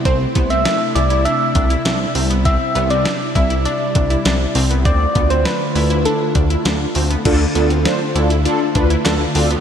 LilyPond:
<<
  \new Staff \with { instrumentName = "Soft synth lead" } { \time 4/4 \key d \dorian \tempo 4 = 100 c''8. e''8. d''8 e''4. r8 | e''8. d''8. e''8 d''4. r8 | d''8. c''16 b'4 a'4. r8 | r1 | }
  \new Staff \with { instrumentName = "Analog polysynth" } { \time 4/4 \key d \dorian r1 | r1 | r1 | <d' f' a'>8 <d' f' a'>8 <d' f' c''>8 <d' f' a'>8 <d' f' a'>8 <d' f' b'>8 <d' f' a'>8 <d' f' a'>8 | }
  \new Staff \with { instrumentName = "Synth pluck" } { \time 4/4 \key d \dorian c'8 b16 c'16 d'8 e'16 e'16 d'8 d'16 e'16 d'8 c'16 b16 | c'8 b16 c'16 d'8 e'16 e'16 d'8 d'16 e'16 d'8 c'16 b16 | c'8 b16 c'16 d'8 e'16 e'16 d'8 d'16 e'16 d'8 c'16 b16 | d'8 b16 c'16 d'8 e'16 e'16 d'8 d'16 e'16 d'8 c'16 b16 | }
  \new Staff \with { instrumentName = "String machine" } { \time 4/4 \key d \dorian << { <c e'>1~ | <c e'>1 | <d f'>1 | <d f'>1 | } \\ { a2.~ a8 g8~ | g1 | a1 | a1 | } >> }
  \new Staff \with { instrumentName = "Analog synth bass" } { \clef bass \time 4/4 \key d \dorian c,8 c,8. r16 c,8. r16 c,8 c,8 c,8~ | c,8 c,8. r16 c,8. r16 c,8 c,8 c,8 | d,8 d,8. r16 d,8. r16 d,8 d,8 d,8 | d,8 d,8. r16 d,8. r16 d,8 d,8 d,8 | }
  \new DrumStaff \with { instrumentName = "Drums" } \drummode { \time 4/4 <hh bd>8 <hh bd>16 hh16 <hh sn>8 hh16 hh16 hh8 <hh bd>16 hh16 <hh sn>8 hho16 hh16 | <hh bd>8 hh16 hh16 <hh sn>8 <hh bd>16 hh16 hh8 <hh bd>16 hh16 <hh sn>8 hho16 hh16 | <hh bd>8 <hh bd>16 hh16 <hh sn>8 hho16 hh16 hh8 <hh bd>16 hh16 <hh sn>8 hho16 hh16 | <cymc hh bd>8 hh16 hh16 <hh sn>8 hh16 hh16 hh8 <hh bd>16 hh16 <hc hh sn>8 hho16 hh16 | }
>>